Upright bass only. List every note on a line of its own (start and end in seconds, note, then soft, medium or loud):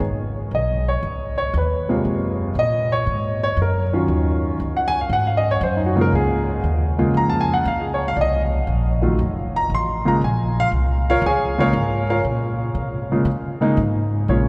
0.00 0.50 G#1 medium
0.51 1.01 B1 medium
1.03 1.52 C#2 medium
1.54 2.03 D#2 medium
2.05 2.54 F#2 medium
2.55 3.05 A#2 medium
3.07 3.56 G#2 medium
3.57 4.07 F#2 medium
4.08 4.58 D#2 medium
4.60 5.09 C#2 medium
5.10 5.59 G#2 medium
5.61 6.11 F#2 medium
6.12 6.62 C#2 medium
6.64 7.13 D#2 medium
7.14 7.64 F2 medium
7.65 8.15 C#2 medium
8.17 8.66 C2 medium
8.67 9.17 A#1 medium
9.19 9.68 F1 medium
9.70 10.19 A1 medium
10.21 10.70 A#1 medium
10.72 11.21 C2 medium
11.22 11.72 C#2 medium
11.73 12.23 G#2 medium
12.24 12.74 A#2 medium
12.75 13.24 C3 medium
13.25 13.75 C#3 medium
13.77 14.27 G#2 medium
14.28 14.48 A#1 medium